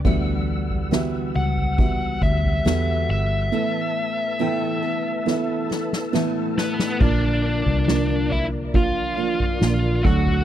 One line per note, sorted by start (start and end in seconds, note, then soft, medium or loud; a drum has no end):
0.04 1.31 D2 loud
0.04 1.31 D3 medium
0.04 0.90 D3 medium
0.04 0.92 E3 medium
0.04 3.49 G3 medium
0.04 0.91 G3 medium
0.04 0.87 B3 medium
0.04 0.93 B3 medium
0.04 0.87 F#4 medium
0.04 0.92 F#4 medium
0.04 0.88 G4 medium
0.04 0.88 E5 medium
0.04 3.49 F#5 medium
0.04 6.97 E6 medium
0.04 kick medium
0.04 floor tom loud
0.70 floor tom medium
0.91 1.35 D3 medium
0.91 1.35 E3 medium
0.91 1.36 G3 medium
0.91 1.74 B3 medium
0.91 1.35 B3 medium
0.91 1.75 F#4 medium
0.91 1.33 F#4 medium
0.91 1.74 G4 medium
0.91 1.75 E5 medium
0.91 snare medium
1.34 2.18 C#2 medium
1.34 1.77 G3 soft
1.34 1.78 B3 soft
1.34 1.78 F#4 medium
1.34 2.22 F#5 medium
1.57 floor tom soft
1.77 2.22 E3 soft
1.77 2.22 G3 medium
1.77 2.61 B3 medium
1.77 2.22 B3 medium
1.77 2.61 F#4 medium
1.77 2.20 F#4 medium
1.77 2.61 G4 medium
1.77 2.61 E5 medium
1.77 kick medium
1.77 floor tom medium
2.22 2.62 D2 medium
2.22 2.65 G3 soft
2.22 2.65 B3 soft
2.22 2.65 F#4 soft
2.22 3.09 E5 medium
2.22 kick medium
2.44 floor tom medium
2.65 3.06 E2 medium
2.65 3.52 D3 medium
2.65 3.52 E3 medium
2.65 3.53 G3 medium
2.65 3.48 B3 medium
2.65 3.53 B3 medium
2.65 3.48 F#4 medium
2.65 3.53 F#4 medium
2.65 3.48 G4 medium
2.65 3.49 A4 medium
2.65 snare medium
3.09 3.49 G1 medium
3.09 6.54 E5 medium
3.52 4.38 A2 medium
3.52 4.79 A2 soft
3.52 4.79 E3 medium
3.52 4.39 E3 medium
3.52 4.39 A3 medium
3.52 4.35 B3 medium
3.52 4.40 B3 medium
3.52 4.35 E4 medium
3.52 4.35 A4 medium
3.52 4.40 A4 medium
3.52 6.97 B4 medium
3.52 4.35 E5 medium
3.52 6.97 A5 medium
4.39 4.83 A2 medium
4.39 4.83 E3 medium
4.39 4.83 A3 medium
4.39 5.22 B3 medium
4.39 4.83 B3 medium
4.39 5.22 E4 medium
4.39 5.23 A4 medium
4.39 4.81 A4 medium
4.39 5.23 G5 medium
4.83 5.26 A3 soft
4.83 5.27 B3 medium
4.83 5.26 A4 medium
5.26 5.70 E3 medium
5.26 5.70 A3 medium
5.26 6.09 B3 medium
5.26 5.70 B3 medium
5.26 6.09 E4 medium
5.26 6.09 A4 medium
5.26 5.68 A4 medium
5.26 6.09 E5 medium
5.26 snare medium
5.70 6.13 A3 medium
5.70 6.14 B3 soft
5.70 6.13 A4 medium
5.70 snare medium
5.93 snare medium
6.13 7.00 A2 medium
6.13 7.01 E3 medium
6.13 7.01 A3 medium
6.13 6.96 B3 medium
6.13 7.01 B3 medium
6.13 6.96 E4 medium
6.13 6.96 A4 medium
6.13 7.01 A4 medium
6.13 6.96 E5 medium
6.13 snare medium
6.58 6.99 B3 medium
6.58 7.02 B4 medium
6.58 snare medium
6.79 snare medium
7.00 7.62 A#1 loud
7.00 8.27 A#2 soft
7.00 8.31 A#2 medium
7.00 9.60 D3 medium
7.00 7.83 F3 medium
7.00 7.83 A#3 medium
7.00 7.83 D4 medium
7.00 8.28 D4 medium
7.00 8.32 D4 medium
7.00 8.32 F4 medium
7.00 10.02 A#4 medium
7.00 7.83 A#4 medium
7.00 10.02 D5 medium
7.00 8.35 D5 medium
7.00 kick loud
7.00 floor tom loud
7.00 crash medium
7.66 9.18 C2 medium
7.66 floor tom medium
7.87 8.70 F3 medium
7.87 8.70 A#3 medium
7.87 8.70 D4 medium
7.87 8.71 A#4 medium
7.87 snare loud
8.31 9.19 A#3 soft
8.31 9.19 D4 soft
8.31 8.44 E4 medium
8.31 8.44 E5 medium
8.31 floor tom soft
8.74 9.15 F3 medium
8.74 9.15 A#3 medium
8.74 9.16 D4 medium
8.74 9.16 F4 medium
8.74 10.02 F4 medium
8.74 10.05 F5 loud
8.74 kick medium
8.74 floor tom medium
9.17 9.59 A#1 medium
9.17 9.59 F3 medium
9.17 9.59 A#3 medium
9.17 9.61 A#3 soft
9.17 9.59 D4 medium
9.17 9.62 D4 soft
9.17 9.61 F4 medium
9.17 9.59 A#4 medium
9.40 floor tom medium
9.60 10.02 A#1 medium
9.60 10.05 D3 medium
9.60 10.04 F3 medium
9.60 10.05 A#3 medium
9.60 10.03 D4 medium
9.60 10.05 D4 medium
9.60 10.05 F4 medium
9.60 10.04 F4 medium
9.60 snare medium
10.04 10.44 D2 medium
10.04 10.44 A2 medium
10.04 10.44 F#3 medium
10.04 10.44 A3 medium
10.04 10.44 A3 soft
10.04 10.44 D4 medium
10.04 10.44 D4 soft
10.04 10.44 F#4 soft
10.04 10.44 F#4 medium
10.04 10.44 A4 medium
10.04 10.44 F#5 medium
10.04 kick loud
10.04 floor tom medium
10.26 floor tom medium